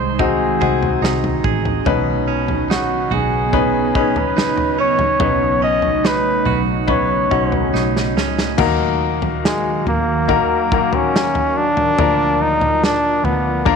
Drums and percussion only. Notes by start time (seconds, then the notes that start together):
0.19 kick, floor tom
0.62 kick
0.83 floor tom
1.04 snare
1.24 floor tom
1.44 kick
1.65 floor tom
1.86 kick, floor tom
2.48 floor tom
2.71 snare
3.12 floor tom
3.53 kick, floor tom
3.95 kick
4.16 floor tom
4.38 snare
4.57 floor tom
4.99 floor tom
5.20 floor tom
5.82 floor tom
6.05 snare
6.45 floor tom
6.88 kick, floor tom
7.31 kick
7.52 floor tom
7.75 snare
7.96 snare
8.18 snare
8.39 snare
8.58 kick, floor tom, crash
9.22 floor tom
9.45 snare
9.87 floor tom
10.29 kick, floor tom
10.72 kick
10.93 floor tom
11.16 snare
11.35 floor tom
11.77 floor tom
11.98 floor tom
12.61 floor tom
12.84 snare
13.25 floor tom
13.66 kick, floor tom